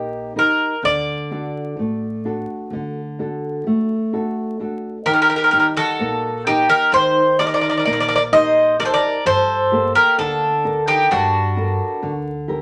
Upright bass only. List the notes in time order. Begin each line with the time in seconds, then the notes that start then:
Already playing: A#1
0.83 D2
1.77 A1
2.71 D2
5.05 D#2
5.99 A#1
6.92 D#2
7.86 A#1
9.26 G2
10.19 D2
11.11 G2
12.03 D2